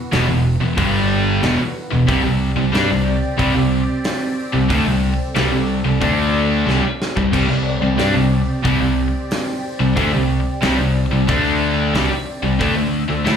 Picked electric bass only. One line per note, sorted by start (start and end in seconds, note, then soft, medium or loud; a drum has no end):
0.13 0.28 E1 medium
0.30 0.59 E1 medium
0.62 0.77 E1 medium
0.78 1.39 G1 loud
1.43 1.58 E1 medium
1.93 2.08 E1 medium
2.08 2.23 C2 medium
2.27 2.56 C2 medium
2.58 2.73 C2 medium
2.74 2.89 G2 medium
2.92 3.21 C2 medium
3.39 3.54 C2 loud
3.56 3.86 C2 medium
4.54 4.69 C2 medium
4.70 4.85 D2 medium
4.87 5.17 C2 medium
5.36 5.51 C2 medium
5.52 5.83 C2 medium
5.85 6.00 C2 medium
6.02 6.63 D2 medium
6.67 6.82 C2 medium
7.17 7.32 C2 medium
7.33 7.48 C2 medium
7.49 7.80 C2 medium
7.82 7.97 C2 medium
7.99 8.14 G2 medium
8.16 8.46 C2 medium
8.65 8.80 C2 medium
8.81 9.12 C2 medium
9.80 9.95 C2 medium
9.97 10.12 D2 medium
10.14 10.44 C2 medium
10.64 10.78 C2 medium
10.80 11.10 C2 medium
11.13 11.27 C2 medium
11.29 11.90 D2 loud
11.95 12.10 C2 medium
12.11 muted picked electric bass stroke soft
12.43 12.59 C2 medium
12.61 12.75 D2 medium
12.76 13.07 D2 medium
13.10 13.25 D2 medium
13.26 13.37 A2 medium